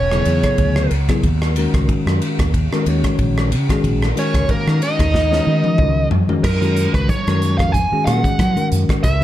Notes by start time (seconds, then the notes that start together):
Already playing: E1 C#4 C#5
0.11 C#3 F#3 B3 E4 G#4, cross-stick
0.25 E2 C#3 F#3 B3 E4 G#4, ride
0.43 kick, cross-stick, ride
0.58 D2, kick, ride
0.76 cross-stick
0.91 C#2, ride
1.09 C#3 F#3 B3 E4 G#4, kick, cross-stick, ride
1.23 D#2, kick, ride
1.42 cross-stick
1.56 D#3 G#3 C#4 F#4 A#4, ride
1.74 C#2, kick, cross-stick, ride
1.89 kick, ride
2.06 F#2, cross-stick
2.22 ride
2.39 D#2, kick, cross-stick, ride
2.54 kick, ride
2.72 D#3 G#3 C#4 F#4 A#4, cross-stick
2.86 D#2 D#3 G#3 C#4 F#4 C#5, ride
3.04 kick, cross-stick, ride
3.19 A#1, kick, ride
3.38 cross-stick
3.52 C#3, ride
3.68 D#3 G#3 C#4 F#4 G#4, kick, cross-stick, ride
3.84 A#1, kick, ride
4.02 cross-stick
4.16 D#3 G#3 C#4 F#4 A#4 C#5, ride
4.34 C#2, kick, cross-stick, ride
4.49 A#3 A#4, kick, ride
4.67 D#3, cross-stick
4.82 D#4 D#5, ride
4.99 D#2, kick, cross-stick, ride
5.14 kick, snare
5.31 D#3 G#3 C#4 F#4 C#5, snare
5.47 D#3 G#3 C#4 F#4 A#4
5.64 high tom
5.78 C#2, kick, mid tom
6.11 F#2, floor tom
6.28 D#3 G#3 C#4 F#4 A#4, floor tom
6.44 F#2 A#4, kick, cross-stick, crash, muted conga
6.61 D#3 G#3 C#4 F#4 A#4, closed hi-hat
6.77 closed hi-hat
6.94 C#2 B4, kick, cross-stick, closed hi-hat
7.09 C#5, kick, closed hi-hat, muted conga, high conga
7.27 F#2 D#3 G#3 C#4 F#4 A#4, cross-stick, closed hi-hat
7.42 closed hi-hat
7.58 F2 F5, kick, cross-stick, closed hi-hat
7.72 G#5, kick, closed hi-hat, muted conga
7.92 D#3 G#3 C#4 F#4 G#4, muted fretless electric bass stroke
8.06 A#2 F#5, cross-stick, closed hi-hat, high conga
8.24 kick, closed hi-hat
8.39 F#3, kick, cross-stick, closed hi-hat, high conga
8.56 D#3 G#3 C#4 F#4 A#4, muted fretless electric bass stroke, closed hi-hat
8.72 F#2, closed hi-hat
8.89 muted fretless electric bass stroke, kick, cross-stick, closed hi-hat
9.03 C#2 E5, kick, cross-stick, closed hi-hat, muted conga
9.20 D#3 G#3 B4